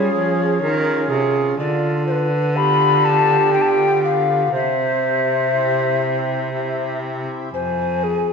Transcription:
0.00 0.13 G3 medium
0.00 0.58 C#4 soft
0.00 0.58 F4 soft
0.00 0.58 G#4 soft
0.00 0.61 G#4 medium
0.00 1.34 C#5 loud
0.13 0.58 F3 medium
0.13 0.61 F3 medium
0.62 1.09 D#3 medium
0.62 1.07 D#3 medium
0.62 1.55 C#4 soft
0.62 1.55 F4 soft
0.62 1.55 G#4 medium
0.62 1.11 A#4 medium
1.10 1.57 C3 medium
1.10 1.55 C3 medium
1.10 1.58 G#4 medium
1.58 4.49 D3 medium
1.58 2.27 F4 medium
1.58 2.04 D5 loud
2.06 2.12 C5 medium
2.11 2.58 B4 medium
2.55 3.50 B3 soft
2.55 3.50 F4 soft
2.55 4.49 G4 medium
2.55 3.50 G4 soft
2.55 3.06 B5 loud
3.05 3.53 A5 loud
3.53 4.49 B3 soft
3.53 4.49 F4 soft
3.53 4.50 G4 soft
3.53 3.63 G5 loud
3.61 3.70 A5 medium
3.68 4.03 G5 loud
4.04 4.52 F5 medium
4.52 7.28 C3 medium
4.52 7.29 C3 medium
4.52 6.99 C5 medium
4.52 7.00 E5 loud
5.53 6.49 C4 soft
5.53 6.49 E4 soft
5.53 6.50 G4 soft
6.53 7.49 C4 soft
6.53 7.49 E4 soft
6.53 7.49 G4 soft
7.53 8.33 F2 medium
7.53 8.05 C5 medium
7.53 8.33 G#5 medium
8.03 8.33 G#4 medium

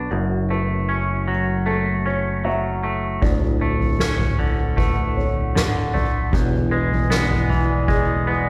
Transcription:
0.00 0.12 B3 soft
0.00 0.11 D4 soft
0.00 0.88 F#4 soft
0.00 0.50 D5 soft
0.11 3.18 F#1 medium
0.11 2.05 F#2 soft
0.50 1.65 A3 soft
0.50 1.28 B4 medium
0.89 2.04 C#4 soft
1.28 2.43 F#3 soft
1.66 2.82 A3 medium
1.66 2.06 A4 medium
2.06 3.22 C#4 soft
2.06 2.45 C#5 medium
2.45 3.22 F#3 soft
2.45 3.22 E5 medium
2.83 3.22 A3 soft
3.22 6.29 D1 soft
3.22 5.16 D2 medium
3.22 6.31 A4 medium
3.22 4.00 D5 medium
3.22 6.31 F#5 medium
3.22 kick medium
3.22 floor tom medium
3.42 floor tom medium
3.61 4.76 A3 soft
3.80 floor tom medium
4.00 5.95 C#4 soft
4.00 4.78 A4 medium
4.00 snare medium
4.19 floor tom medium
4.19 mid tom soft
4.38 5.54 D3 soft
4.38 floor tom medium
4.77 5.93 A3 soft
4.77 5.17 B4 medium
4.77 kick medium
4.77 floor tom medium
5.17 5.95 C#5 medium
5.17 floor tom medium
5.55 6.33 D3 soft
5.55 snare medium
5.55 mid tom medium
5.94 6.33 A3 soft
5.94 6.72 D5 soft
5.94 floor tom medium
6.32 8.49 E1 medium
6.32 8.28 E2 medium
6.32 8.49 E4 medium
6.32 8.49 D5 medium
6.32 8.49 G#5 medium
6.32 kick medium
6.32 floor tom medium
6.53 floor tom medium
6.71 7.87 G#3 soft
6.71 7.50 B4 medium
6.92 floor tom medium
7.10 8.26 B3 soft
7.10 snare medium
7.31 floor tom soft
7.31 mid tom medium
7.50 8.49 E3 medium
7.50 floor tom medium
7.88 8.49 G#3 medium
7.88 8.28 G#4 medium
7.88 kick medium
7.88 floor tom medium
8.27 8.49 B3 soft
8.27 8.49 B4 medium

